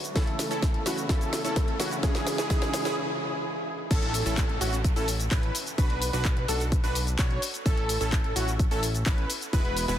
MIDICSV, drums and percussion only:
0, 0, Header, 1, 2, 480
1, 0, Start_track
1, 0, Key_signature, 3, "major"
1, 0, Tempo, 468750
1, 161, Time_signature, 4, 2, 24, 8
1, 10226, End_track
2, 0, Start_track
2, 0, Title_t, "Drums"
2, 40, Note_on_c, 9, 42, 39
2, 46, Note_on_c, 9, 82, 32
2, 142, Note_off_c, 9, 42, 0
2, 148, Note_off_c, 9, 82, 0
2, 160, Note_on_c, 9, 38, 75
2, 160, Note_on_c, 9, 42, 90
2, 161, Note_on_c, 9, 36, 124
2, 166, Note_on_c, 9, 82, 41
2, 262, Note_off_c, 9, 38, 0
2, 262, Note_off_c, 9, 42, 0
2, 263, Note_off_c, 9, 36, 0
2, 268, Note_off_c, 9, 82, 0
2, 280, Note_on_c, 9, 42, 39
2, 382, Note_off_c, 9, 42, 0
2, 399, Note_on_c, 9, 38, 74
2, 399, Note_on_c, 9, 46, 107
2, 405, Note_on_c, 9, 82, 72
2, 502, Note_off_c, 9, 38, 0
2, 502, Note_off_c, 9, 46, 0
2, 508, Note_off_c, 9, 82, 0
2, 520, Note_on_c, 9, 42, 39
2, 526, Note_on_c, 9, 82, 31
2, 622, Note_off_c, 9, 42, 0
2, 628, Note_off_c, 9, 82, 0
2, 640, Note_on_c, 9, 38, 78
2, 640, Note_on_c, 9, 42, 89
2, 641, Note_on_c, 9, 36, 123
2, 646, Note_on_c, 9, 82, 42
2, 742, Note_off_c, 9, 38, 0
2, 742, Note_off_c, 9, 42, 0
2, 743, Note_off_c, 9, 36, 0
2, 748, Note_off_c, 9, 82, 0
2, 760, Note_on_c, 9, 42, 39
2, 862, Note_off_c, 9, 42, 0
2, 879, Note_on_c, 9, 38, 79
2, 879, Note_on_c, 9, 46, 110
2, 885, Note_on_c, 9, 82, 75
2, 982, Note_off_c, 9, 38, 0
2, 982, Note_off_c, 9, 46, 0
2, 988, Note_off_c, 9, 82, 0
2, 999, Note_on_c, 9, 42, 38
2, 1005, Note_on_c, 9, 82, 32
2, 1102, Note_off_c, 9, 42, 0
2, 1108, Note_off_c, 9, 82, 0
2, 1119, Note_on_c, 9, 38, 84
2, 1119, Note_on_c, 9, 42, 89
2, 1121, Note_on_c, 9, 36, 125
2, 1125, Note_on_c, 9, 82, 43
2, 1222, Note_off_c, 9, 38, 0
2, 1222, Note_off_c, 9, 42, 0
2, 1223, Note_off_c, 9, 36, 0
2, 1228, Note_off_c, 9, 82, 0
2, 1239, Note_on_c, 9, 42, 38
2, 1245, Note_on_c, 9, 82, 30
2, 1342, Note_off_c, 9, 42, 0
2, 1348, Note_off_c, 9, 82, 0
2, 1360, Note_on_c, 9, 38, 84
2, 1360, Note_on_c, 9, 46, 108
2, 1366, Note_on_c, 9, 82, 72
2, 1462, Note_off_c, 9, 38, 0
2, 1462, Note_off_c, 9, 46, 0
2, 1468, Note_off_c, 9, 82, 0
2, 1480, Note_on_c, 9, 42, 39
2, 1486, Note_on_c, 9, 82, 33
2, 1582, Note_off_c, 9, 42, 0
2, 1588, Note_off_c, 9, 82, 0
2, 1599, Note_on_c, 9, 38, 90
2, 1599, Note_on_c, 9, 42, 89
2, 1601, Note_on_c, 9, 36, 117
2, 1605, Note_on_c, 9, 82, 43
2, 1701, Note_off_c, 9, 38, 0
2, 1701, Note_off_c, 9, 42, 0
2, 1703, Note_off_c, 9, 36, 0
2, 1708, Note_off_c, 9, 82, 0
2, 1719, Note_on_c, 9, 42, 39
2, 1822, Note_off_c, 9, 42, 0
2, 1839, Note_on_c, 9, 38, 89
2, 1839, Note_on_c, 9, 46, 110
2, 1845, Note_on_c, 9, 82, 77
2, 1942, Note_off_c, 9, 38, 0
2, 1942, Note_off_c, 9, 46, 0
2, 1948, Note_off_c, 9, 82, 0
2, 1960, Note_on_c, 9, 42, 38
2, 1966, Note_on_c, 9, 82, 33
2, 2062, Note_off_c, 9, 42, 0
2, 2068, Note_off_c, 9, 82, 0
2, 2080, Note_on_c, 9, 38, 93
2, 2080, Note_on_c, 9, 42, 87
2, 2081, Note_on_c, 9, 36, 122
2, 2085, Note_on_c, 9, 82, 44
2, 2182, Note_off_c, 9, 38, 0
2, 2182, Note_off_c, 9, 42, 0
2, 2183, Note_off_c, 9, 36, 0
2, 2188, Note_off_c, 9, 82, 0
2, 2200, Note_on_c, 9, 38, 84
2, 2200, Note_on_c, 9, 42, 38
2, 2302, Note_off_c, 9, 38, 0
2, 2302, Note_off_c, 9, 42, 0
2, 2320, Note_on_c, 9, 38, 92
2, 2320, Note_on_c, 9, 46, 104
2, 2326, Note_on_c, 9, 82, 76
2, 2422, Note_off_c, 9, 38, 0
2, 2422, Note_off_c, 9, 46, 0
2, 2428, Note_off_c, 9, 82, 0
2, 2440, Note_on_c, 9, 38, 86
2, 2440, Note_on_c, 9, 42, 38
2, 2446, Note_on_c, 9, 82, 33
2, 2543, Note_off_c, 9, 38, 0
2, 2543, Note_off_c, 9, 42, 0
2, 2549, Note_off_c, 9, 82, 0
2, 2561, Note_on_c, 9, 36, 127
2, 2561, Note_on_c, 9, 38, 95
2, 2561, Note_on_c, 9, 42, 86
2, 2567, Note_on_c, 9, 82, 43
2, 2663, Note_off_c, 9, 36, 0
2, 2663, Note_off_c, 9, 38, 0
2, 2663, Note_off_c, 9, 42, 0
2, 2669, Note_off_c, 9, 82, 0
2, 2681, Note_on_c, 9, 38, 86
2, 2681, Note_on_c, 9, 42, 38
2, 2783, Note_off_c, 9, 38, 0
2, 2783, Note_off_c, 9, 42, 0
2, 2801, Note_on_c, 9, 38, 104
2, 2801, Note_on_c, 9, 46, 109
2, 2807, Note_on_c, 9, 82, 77
2, 2903, Note_off_c, 9, 38, 0
2, 2903, Note_off_c, 9, 46, 0
2, 2909, Note_off_c, 9, 82, 0
2, 2921, Note_on_c, 9, 38, 86
2, 2921, Note_on_c, 9, 42, 37
2, 2927, Note_on_c, 9, 82, 33
2, 3023, Note_off_c, 9, 38, 0
2, 3023, Note_off_c, 9, 42, 0
2, 3029, Note_off_c, 9, 82, 0
2, 4001, Note_on_c, 9, 36, 117
2, 4001, Note_on_c, 9, 42, 97
2, 4001, Note_on_c, 9, 49, 104
2, 4007, Note_on_c, 9, 82, 46
2, 4104, Note_off_c, 9, 36, 0
2, 4104, Note_off_c, 9, 42, 0
2, 4104, Note_off_c, 9, 49, 0
2, 4110, Note_off_c, 9, 82, 0
2, 4121, Note_on_c, 9, 42, 42
2, 4223, Note_off_c, 9, 42, 0
2, 4240, Note_on_c, 9, 46, 105
2, 4246, Note_on_c, 9, 82, 78
2, 4343, Note_off_c, 9, 46, 0
2, 4349, Note_off_c, 9, 82, 0
2, 4361, Note_on_c, 9, 42, 42
2, 4367, Note_on_c, 9, 82, 35
2, 4463, Note_off_c, 9, 42, 0
2, 4469, Note_off_c, 9, 82, 0
2, 4481, Note_on_c, 9, 36, 120
2, 4481, Note_on_c, 9, 39, 123
2, 4481, Note_on_c, 9, 42, 97
2, 4487, Note_on_c, 9, 82, 44
2, 4583, Note_off_c, 9, 42, 0
2, 4584, Note_off_c, 9, 36, 0
2, 4584, Note_off_c, 9, 39, 0
2, 4589, Note_off_c, 9, 82, 0
2, 4601, Note_on_c, 9, 42, 42
2, 4703, Note_off_c, 9, 42, 0
2, 4721, Note_on_c, 9, 46, 107
2, 4727, Note_on_c, 9, 82, 79
2, 4823, Note_off_c, 9, 46, 0
2, 4829, Note_off_c, 9, 82, 0
2, 4841, Note_on_c, 9, 42, 42
2, 4847, Note_on_c, 9, 82, 34
2, 4943, Note_off_c, 9, 42, 0
2, 4949, Note_off_c, 9, 82, 0
2, 4961, Note_on_c, 9, 36, 119
2, 4961, Note_on_c, 9, 42, 100
2, 4967, Note_on_c, 9, 82, 46
2, 5063, Note_off_c, 9, 42, 0
2, 5064, Note_off_c, 9, 36, 0
2, 5069, Note_off_c, 9, 82, 0
2, 5081, Note_on_c, 9, 42, 41
2, 5087, Note_on_c, 9, 82, 31
2, 5183, Note_off_c, 9, 42, 0
2, 5189, Note_off_c, 9, 82, 0
2, 5201, Note_on_c, 9, 46, 106
2, 5207, Note_on_c, 9, 82, 79
2, 5303, Note_off_c, 9, 46, 0
2, 5309, Note_off_c, 9, 82, 0
2, 5321, Note_on_c, 9, 42, 42
2, 5327, Note_on_c, 9, 82, 35
2, 5423, Note_off_c, 9, 42, 0
2, 5429, Note_off_c, 9, 82, 0
2, 5441, Note_on_c, 9, 36, 113
2, 5441, Note_on_c, 9, 42, 98
2, 5442, Note_on_c, 9, 39, 125
2, 5447, Note_on_c, 9, 82, 46
2, 5544, Note_off_c, 9, 36, 0
2, 5544, Note_off_c, 9, 39, 0
2, 5544, Note_off_c, 9, 42, 0
2, 5549, Note_off_c, 9, 82, 0
2, 5561, Note_on_c, 9, 42, 41
2, 5663, Note_off_c, 9, 42, 0
2, 5681, Note_on_c, 9, 46, 107
2, 5687, Note_on_c, 9, 82, 78
2, 5783, Note_off_c, 9, 46, 0
2, 5789, Note_off_c, 9, 82, 0
2, 5801, Note_on_c, 9, 42, 41
2, 5807, Note_on_c, 9, 82, 33
2, 5903, Note_off_c, 9, 42, 0
2, 5909, Note_off_c, 9, 82, 0
2, 5920, Note_on_c, 9, 42, 91
2, 5921, Note_on_c, 9, 36, 125
2, 5926, Note_on_c, 9, 82, 43
2, 6023, Note_off_c, 9, 36, 0
2, 6023, Note_off_c, 9, 42, 0
2, 6029, Note_off_c, 9, 82, 0
2, 6041, Note_on_c, 9, 42, 41
2, 6143, Note_off_c, 9, 42, 0
2, 6160, Note_on_c, 9, 46, 109
2, 6166, Note_on_c, 9, 82, 75
2, 6263, Note_off_c, 9, 46, 0
2, 6269, Note_off_c, 9, 82, 0
2, 6280, Note_on_c, 9, 42, 41
2, 6286, Note_on_c, 9, 82, 33
2, 6383, Note_off_c, 9, 42, 0
2, 6389, Note_off_c, 9, 82, 0
2, 6400, Note_on_c, 9, 39, 124
2, 6400, Note_on_c, 9, 42, 92
2, 6401, Note_on_c, 9, 36, 123
2, 6406, Note_on_c, 9, 82, 43
2, 6502, Note_off_c, 9, 42, 0
2, 6503, Note_off_c, 9, 36, 0
2, 6503, Note_off_c, 9, 39, 0
2, 6508, Note_off_c, 9, 82, 0
2, 6520, Note_on_c, 9, 42, 41
2, 6623, Note_off_c, 9, 42, 0
2, 6640, Note_on_c, 9, 46, 108
2, 6646, Note_on_c, 9, 82, 78
2, 6742, Note_off_c, 9, 46, 0
2, 6748, Note_off_c, 9, 82, 0
2, 6760, Note_on_c, 9, 42, 39
2, 6766, Note_on_c, 9, 82, 32
2, 6863, Note_off_c, 9, 42, 0
2, 6869, Note_off_c, 9, 82, 0
2, 6881, Note_on_c, 9, 36, 127
2, 6881, Note_on_c, 9, 42, 96
2, 6887, Note_on_c, 9, 82, 45
2, 6983, Note_off_c, 9, 36, 0
2, 6983, Note_off_c, 9, 42, 0
2, 6989, Note_off_c, 9, 82, 0
2, 7000, Note_on_c, 9, 42, 41
2, 7006, Note_on_c, 9, 82, 31
2, 7103, Note_off_c, 9, 42, 0
2, 7109, Note_off_c, 9, 82, 0
2, 7120, Note_on_c, 9, 46, 110
2, 7126, Note_on_c, 9, 82, 77
2, 7223, Note_off_c, 9, 46, 0
2, 7229, Note_off_c, 9, 82, 0
2, 7241, Note_on_c, 9, 42, 41
2, 7247, Note_on_c, 9, 82, 33
2, 7343, Note_off_c, 9, 42, 0
2, 7349, Note_off_c, 9, 82, 0
2, 7361, Note_on_c, 9, 36, 116
2, 7361, Note_on_c, 9, 39, 127
2, 7361, Note_on_c, 9, 42, 96
2, 7367, Note_on_c, 9, 82, 44
2, 7463, Note_off_c, 9, 36, 0
2, 7463, Note_off_c, 9, 39, 0
2, 7463, Note_off_c, 9, 42, 0
2, 7469, Note_off_c, 9, 82, 0
2, 7481, Note_on_c, 9, 42, 41
2, 7583, Note_off_c, 9, 42, 0
2, 7600, Note_on_c, 9, 46, 110
2, 7606, Note_on_c, 9, 82, 77
2, 7703, Note_off_c, 9, 46, 0
2, 7709, Note_off_c, 9, 82, 0
2, 7720, Note_on_c, 9, 42, 41
2, 7726, Note_on_c, 9, 82, 32
2, 7823, Note_off_c, 9, 42, 0
2, 7829, Note_off_c, 9, 82, 0
2, 7841, Note_on_c, 9, 36, 124
2, 7841, Note_on_c, 9, 42, 92
2, 7847, Note_on_c, 9, 82, 43
2, 7943, Note_off_c, 9, 36, 0
2, 7943, Note_off_c, 9, 42, 0
2, 7949, Note_off_c, 9, 82, 0
2, 7961, Note_on_c, 9, 42, 40
2, 8063, Note_off_c, 9, 42, 0
2, 8081, Note_on_c, 9, 46, 114
2, 8087, Note_on_c, 9, 82, 74
2, 8183, Note_off_c, 9, 46, 0
2, 8189, Note_off_c, 9, 82, 0
2, 8201, Note_on_c, 9, 42, 40
2, 8207, Note_on_c, 9, 82, 32
2, 8303, Note_off_c, 9, 42, 0
2, 8309, Note_off_c, 9, 82, 0
2, 8321, Note_on_c, 9, 36, 127
2, 8321, Note_on_c, 9, 39, 120
2, 8321, Note_on_c, 9, 42, 92
2, 8326, Note_on_c, 9, 82, 43
2, 8423, Note_off_c, 9, 36, 0
2, 8423, Note_off_c, 9, 39, 0
2, 8423, Note_off_c, 9, 42, 0
2, 8429, Note_off_c, 9, 82, 0
2, 8441, Note_on_c, 9, 42, 39
2, 8543, Note_off_c, 9, 42, 0
2, 8560, Note_on_c, 9, 46, 114
2, 8566, Note_on_c, 9, 82, 76
2, 8663, Note_off_c, 9, 46, 0
2, 8669, Note_off_c, 9, 82, 0
2, 8680, Note_on_c, 9, 42, 38
2, 8686, Note_on_c, 9, 82, 32
2, 8783, Note_off_c, 9, 42, 0
2, 8789, Note_off_c, 9, 82, 0
2, 8801, Note_on_c, 9, 36, 125
2, 8801, Note_on_c, 9, 42, 93
2, 8807, Note_on_c, 9, 82, 43
2, 8903, Note_off_c, 9, 36, 0
2, 8903, Note_off_c, 9, 42, 0
2, 8909, Note_off_c, 9, 82, 0
2, 8920, Note_on_c, 9, 42, 39
2, 8926, Note_on_c, 9, 82, 30
2, 9022, Note_off_c, 9, 42, 0
2, 9028, Note_off_c, 9, 82, 0
2, 9040, Note_on_c, 9, 46, 110
2, 9046, Note_on_c, 9, 82, 75
2, 9142, Note_off_c, 9, 46, 0
2, 9148, Note_off_c, 9, 82, 0
2, 9160, Note_on_c, 9, 42, 40
2, 9166, Note_on_c, 9, 82, 33
2, 9262, Note_off_c, 9, 42, 0
2, 9268, Note_off_c, 9, 82, 0
2, 9280, Note_on_c, 9, 39, 124
2, 9280, Note_on_c, 9, 42, 92
2, 9281, Note_on_c, 9, 36, 119
2, 9286, Note_on_c, 9, 82, 43
2, 9382, Note_off_c, 9, 42, 0
2, 9383, Note_off_c, 9, 36, 0
2, 9383, Note_off_c, 9, 39, 0
2, 9388, Note_off_c, 9, 82, 0
2, 9400, Note_on_c, 9, 42, 40
2, 9503, Note_off_c, 9, 42, 0
2, 9520, Note_on_c, 9, 46, 112
2, 9526, Note_on_c, 9, 82, 77
2, 9622, Note_off_c, 9, 46, 0
2, 9628, Note_off_c, 9, 82, 0
2, 9640, Note_on_c, 9, 42, 39
2, 9646, Note_on_c, 9, 82, 32
2, 9743, Note_off_c, 9, 42, 0
2, 9748, Note_off_c, 9, 82, 0
2, 9760, Note_on_c, 9, 42, 90
2, 9761, Note_on_c, 9, 36, 121
2, 9766, Note_on_c, 9, 82, 43
2, 9862, Note_off_c, 9, 42, 0
2, 9863, Note_off_c, 9, 36, 0
2, 9868, Note_off_c, 9, 82, 0
2, 9880, Note_on_c, 9, 42, 38
2, 9983, Note_off_c, 9, 42, 0
2, 10000, Note_on_c, 9, 46, 106
2, 10006, Note_on_c, 9, 82, 76
2, 10103, Note_off_c, 9, 46, 0
2, 10109, Note_off_c, 9, 82, 0
2, 10120, Note_on_c, 9, 42, 39
2, 10126, Note_on_c, 9, 82, 33
2, 10222, Note_off_c, 9, 42, 0
2, 10226, Note_off_c, 9, 82, 0
2, 10226, End_track
0, 0, End_of_file